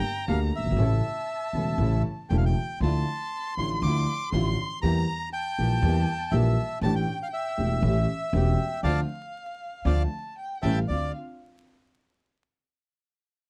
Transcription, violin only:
0.00 0.79 A#5 loud
0.78 2.56 A5 medium
2.81 4.79 C6 loud
4.84 5.30 A#5 medium
5.34 6.79 A5 loud
6.82 7.79 G5 loud
7.83 8.30 E5 medium
8.34 8.86 G5 medium
8.84 9.88 F5 medium
9.86 10.37 A5 medium
10.38 10.62 G5 medium
10.65 10.88 F5 medium
10.89 11.13 F5 medium

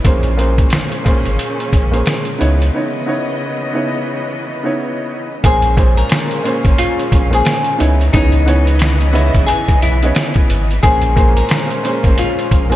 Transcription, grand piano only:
0.04 0.36 A#2 medium
0.04 0.36 A#3 medium
0.04 0.36 C#4 medium
0.04 0.37 G#4 medium
0.04 0.37 C5 loud
0.37 1.01 A#2 loud
0.37 1.01 A#3 medium
0.37 1.01 C#4 medium
0.37 1.02 G#4 medium
0.37 1.02 C5 loud
1.04 1.84 A#2 medium
1.04 1.85 A#3 medium
1.04 1.85 C#4 medium
1.04 1.85 G#4 medium
1.04 1.86 C5 loud
1.91 2.40 A#2 medium
1.91 2.40 A#3 medium
1.91 2.40 C#4 medium
1.91 2.41 G#4 medium
1.91 2.41 C5 medium
2.39 2.62 C#3 medium
2.39 2.63 B3 medium
2.39 2.63 D#4 medium
2.39 2.63 E4 medium
2.39 2.64 C#5 loud
2.74 3.05 C#3 medium
2.74 3.05 B3 medium
2.74 3.06 D#4 medium
2.74 3.06 E4 medium
2.74 3.07 C#5 medium
3.06 3.70 C#3 medium
3.06 3.70 B3 medium
3.06 3.71 D#4 medium
3.06 3.71 E4 medium
3.06 3.71 C#5 loud
3.73 4.54 C#3 medium
3.73 4.54 B3 medium
3.73 4.54 D#4 medium
3.73 4.55 E4 medium
3.73 4.55 C#5 loud
4.63 5.24 C#3 medium
4.63 5.24 B3 medium
4.63 5.25 D#4 medium
4.63 5.25 E4 medium
4.63 5.25 C#5 loud
5.43 5.75 A#2 medium
5.43 5.76 A#3 medium
5.43 5.76 C#4 medium
5.43 5.76 G#4 medium
5.43 5.77 C5 loud
5.77 6.40 A#2 loud
5.77 6.40 A#3 medium
5.77 6.41 C#4 medium
5.77 6.41 G#4 medium
5.77 6.41 C5 loud
6.44 7.24 A#2 loud
6.44 7.24 A#3 medium
6.44 7.24 C#4 medium
6.44 7.25 G#4 medium
6.44 7.25 C5 loud
7.31 7.79 A#2 medium
7.31 7.79 A#3 medium
7.31 7.80 C#4 medium
7.31 7.80 G#4 medium
7.31 7.80 C5 medium
7.78 8.02 C#3 loud
7.78 8.02 B3 medium
7.78 8.02 D#4 medium
7.78 8.03 E4 medium
7.78 8.03 C#5 loud
8.13 8.44 C#3 medium
8.13 8.46 E3 medium
8.13 8.45 B3 medium
8.13 8.45 D#4 medium
8.13 8.46 C#5 loud
8.45 9.09 C#3 medium
8.45 9.10 E3 medium
8.45 9.10 B3 medium
8.45 9.10 D#4 medium
8.45 9.11 C#5 loud
9.12 9.93 C#3 medium
9.12 9.93 B3 medium
9.12 9.94 E4 medium
9.12 9.94 C#5 loud
9.12 9.94 D#5 medium
10.03 10.63 C#3 loud
10.03 10.64 B3 medium
10.03 10.64 E4 medium
10.03 10.65 C#5 loud
10.03 10.64 D#5 medium
10.83 11.14 A#2 medium
10.83 11.15 A#3 medium
10.83 11.15 C#4 medium
10.83 11.16 G#4 medium
10.83 11.16 C5 loud
11.16 11.79 A#2 loud
11.16 11.80 A#3 medium
11.16 11.80 C#4 medium
11.16 11.80 G#4 medium
11.16 11.81 C5 loud
11.83 12.63 A#2 medium
11.83 12.63 A#3 medium
11.83 12.64 C#4 medium
11.83 12.64 G#4 medium
11.83 12.64 C5 loud
12.70 12.76 A#2 medium
12.70 12.76 A#3 medium
12.70 12.76 C#4 medium
12.70 12.76 G#4 medium
12.70 12.76 C5 loud

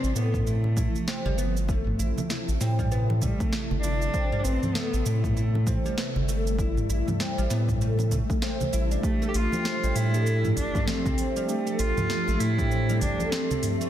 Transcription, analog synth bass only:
0.04 0.12 A1 loud
0.16 0.87 A2 medium
1.26 1.94 G1 medium
1.99 2.13 A1 loud
2.48 2.57 A1 loud
2.61 3.32 A2 loud
3.71 4.08 G1 loud
4.45 4.58 A1 loud
4.93 5.02 A1 loud
5.06 5.77 A2 loud
6.16 6.84 G1 medium
6.89 7.03 A1 loud
7.38 7.47 A1 loud
7.51 8.22 A2 medium
8.73 8.97 A1 medium
9.34 9.48 A1 loud
9.83 9.92 A1 loud
9.95 10.56 A2 loud
10.57 10.70 A1 medium
11.79 11.92 A1 loud
12.28 12.37 A1 loud
12.40 13.01 A2 loud
13.02 13.15 A1 loud

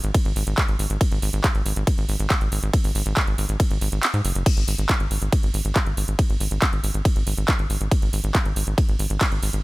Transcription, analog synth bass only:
0.04 0.11 G#1 medium
0.25 0.33 G#1 medium
0.36 0.44 G#1 loud
0.47 0.55 G#1 medium
0.68 0.76 G#1 medium
0.79 0.87 G#1 loud
0.90 0.98 G#1 medium
1.12 1.19 G#1 medium
1.22 1.30 G#1 loud
1.33 1.41 G#1 medium
1.55 1.63 G#1 medium
1.66 1.73 G#1 loud
1.76 1.84 G#1 medium
1.98 2.06 G#1 medium
2.09 2.17 G#1 loud
2.20 2.27 G#1 medium
2.41 2.49 G#1 medium
2.52 2.60 G#1 loud
2.63 2.70 G#1 medium
2.84 2.92 G#1 medium
2.95 3.03 G#1 loud
3.06 3.14 G#1 loud
3.27 3.35 G#1 medium
3.38 3.46 G#1 loud
3.49 3.57 G#1 medium
3.71 3.78 G#1 medium
3.81 3.89 G#1 loud
3.92 4.00 G#1 medium
4.14 4.22 G#2 medium
4.25 4.32 F#1 loud
4.35 4.43 F#1 medium
4.57 4.65 G#1 medium
4.68 4.75 G#1 loud
4.79 4.86 G#1 medium
5.00 5.08 G#1 medium
5.11 5.19 G#1 loud
5.22 5.29 G#1 medium
5.43 5.51 G#1 medium
5.54 5.62 G#1 loud
5.65 5.73 G#1 medium
5.86 5.94 G#1 medium
5.97 6.05 G#1 loud
6.08 6.16 G#1 medium
6.30 6.37 G#1 medium
6.40 6.48 G#1 loud
6.51 6.59 G#1 medium
6.73 6.81 G#1 loud
6.84 6.91 G#1 loud
6.94 7.02 G#1 medium
7.16 7.24 G#1 medium
7.27 7.34 G#1 loud
7.38 7.45 G#1 medium
7.59 7.67 G#1 medium
7.70 7.78 G#1 loud
7.81 7.88 G#1 medium
8.02 8.10 G#1 medium
8.13 8.21 G#1 loud
8.24 8.32 G#1 loud
8.45 8.53 G#1 medium
8.56 8.64 G#1 loud
8.67 8.75 G#1 loud
8.89 8.96 G#1 medium
8.99 9.07 G#1 loud
9.10 9.18 G#1 medium
9.32 9.40 G#1 medium
9.43 9.50 G#1 loud
9.53 9.61 G#1 medium

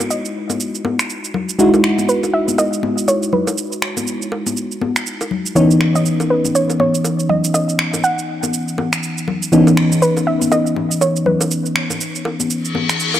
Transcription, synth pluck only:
0.10 1.06 D#5 medium
2.09 2.20 B4 medium
2.34 2.45 E5 loud
2.58 3.09 D#5 loud
3.08 3.33 C#5 medium
3.33 4.03 B4 medium
5.56 5.97 C#5 medium
5.95 6.31 D#5 medium
6.30 6.56 B4 medium
6.55 6.78 C#5 medium
6.80 7.31 C#5 loud
7.29 7.53 D#5 loud
7.54 8.05 D#5 loud
8.04 8.50 F#5 loud
10.02 10.25 B4 medium
10.27 10.50 E5 loud
10.52 11.03 D#5 loud
11.01 11.24 C#5 medium
11.26 11.96 B4 medium

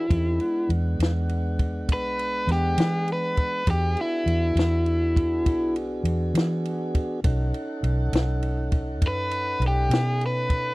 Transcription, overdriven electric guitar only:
0.00 0.68 E4 loud
1.93 2.49 B4 loud
2.52 3.08 G4 medium
3.13 3.68 B4 medium
3.70 3.98 G4 medium
4.01 5.73 E4 medium
9.08 9.62 B4 medium
9.68 10.22 G4 medium
10.26 10.74 B4 loud

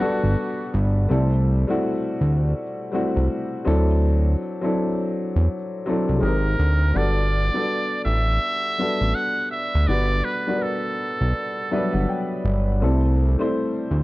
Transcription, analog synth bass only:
0.24 0.36 G1 medium
0.74 1.07 G1 loud
1.11 1.65 C2 loud
2.21 2.54 D2 medium
3.16 3.29 C2 medium
3.67 4.36 D2 loud
5.36 5.48 E2 medium
6.09 6.21 C2 medium
6.22 6.56 G#1 loud
6.59 6.93 D2 loud
6.95 7.50 G1 loud
8.05 8.39 A1 medium
9.01 9.14 A1 medium
9.75 9.87 D2 medium
9.89 10.22 G1 loud
11.21 11.34 B1 medium
11.94 12.07 G1 medium
12.45 12.83 G1 loud
12.82 13.36 C2 loud
13.91 14.03 D2 medium

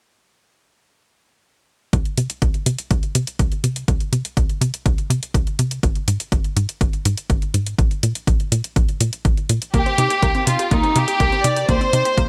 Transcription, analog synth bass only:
1.93 2.03 C2 medium
2.18 2.28 C3 medium
2.42 2.52 C2 medium
2.66 2.77 C3 medium
2.91 3.01 C2 medium
3.15 3.25 C3 medium
3.39 3.50 C2 loud
3.64 3.84 C3 medium
3.88 3.98 C2 medium
4.12 4.23 C3 medium
4.37 4.47 C2 medium
4.61 4.72 C3 medium
4.86 4.96 C2 medium
5.10 5.20 C3 medium
5.34 5.45 C2 medium
5.59 5.80 C3 medium
5.83 5.94 G#1 medium
6.08 6.18 G#2 medium
6.32 6.42 G#1 medium
6.57 6.67 G#2 medium
6.81 6.91 G#1 medium
7.05 7.16 G#2 loud
7.30 7.40 G#1 medium
7.54 7.75 G#2 medium
7.79 7.89 A#1 medium
8.03 8.13 A#2 medium
8.27 8.38 A#1 medium
8.52 8.62 A#2 medium
8.76 8.86 A#1 medium
9.01 9.11 A#2 medium
9.25 9.35 A#1 loud
9.49 9.60 A#2 medium
9.74 9.84 C2 medium
9.98 10.08 C3 medium
10.22 10.33 C2 medium
10.47 10.57 C3 medium
10.71 10.81 C2 medium
10.96 11.06 C3 loud
11.20 11.30 C2 loud
11.44 11.65 C3 medium
11.69 11.79 C2 medium
11.93 12.03 C3 medium
12.18 12.28 C2 medium

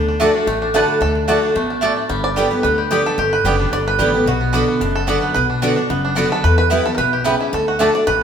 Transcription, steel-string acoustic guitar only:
0.00 0.19 D3 medium
0.20 0.46 D3 loud
0.20 0.47 A3 loud
0.20 0.47 D4 loud
0.20 0.47 F#4 loud
0.47 0.99 A2 loud
0.74 0.99 D3 loud
0.74 1.00 A3 loud
0.74 1.01 D4 loud
0.74 1.01 F#4 loud
1.01 1.27 D3 medium
1.28 1.54 D3 loud
1.28 1.55 A3 loud
1.28 1.55 D4 loud
1.28 1.55 F#4 loud
1.56 1.81 B2 medium
1.83 2.09 A2 medium
2.09 2.61 G2 medium
2.37 2.51 D3 medium
2.37 2.51 G3 loud
2.37 2.52 B3 loud
2.37 2.50 G4 loud
2.51 2.64 B3 medium
2.51 2.63 G4 medium
2.64 2.89 D3 loud
2.91 3.17 D3 loud
2.91 3.17 G3 loud
2.91 3.18 B3 medium
2.91 3.18 G4 loud
3.18 3.70 G2 medium
3.45 3.71 D3 loud
3.45 3.71 G3 medium
3.45 3.72 B3 loud
3.45 3.72 G4 loud
3.73 3.98 D3 loud
3.99 4.14 D3 loud
3.99 4.14 G3 loud
3.99 4.14 B3 loud
3.99 4.13 G4 loud
4.14 4.27 B3 medium
4.14 4.26 G4 medium
4.27 4.79 B2 medium
4.54 4.80 D3 loud
4.54 4.80 B3 medium
4.54 4.81 D4 loud
4.54 4.81 F#4 medium
4.81 5.33 F#2 loud
5.08 5.34 D3 loud
5.08 5.34 B3 loud
5.08 5.35 D4 loud
5.08 5.35 F#4 loud
5.36 5.87 B2 medium
5.62 5.77 D3 loud
5.62 5.77 B3 loud
5.62 5.77 D4 loud
5.62 5.76 F#4 loud
5.77 5.90 D4 medium
5.77 5.89 F#4 medium
5.90 6.42 F#2 loud
6.17 6.43 D3 medium
6.17 6.43 B3 loud
6.17 6.43 D4 loud
6.17 6.44 F#4 loud
6.45 6.96 E2 medium
6.71 6.85 E3 loud
6.71 6.86 G3 loud
6.71 6.86 B3 loud
6.71 6.84 E4 loud
6.85 6.99 B3 medium
6.85 6.98 E4 medium
6.98 7.24 B2 loud
7.25 7.51 C#3 loud
7.53 7.78 D3 loud
7.79 7.94 D3 medium
7.79 7.94 A3 loud
7.79 7.94 D4 loud
7.79 7.93 F#4 loud
7.94 8.07 D4 medium
7.94 8.06 F#4 medium
8.07 8.23 A2 loud

